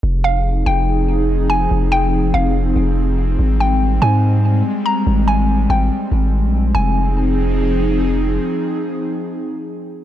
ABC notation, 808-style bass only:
X:1
M:4/4
L:1/16
Q:1/4=143
K:Fm
V:1 name="808-style bass" clef=bass
F,,,6 F,,,8- F,,,2 | F,,,6 F,,,4 F,,,6 | A,,,6 A,,6 z4 | A,,,6 A,,,2 z2 A,,,3 B,,,3 |
F,,,16 | z16 |]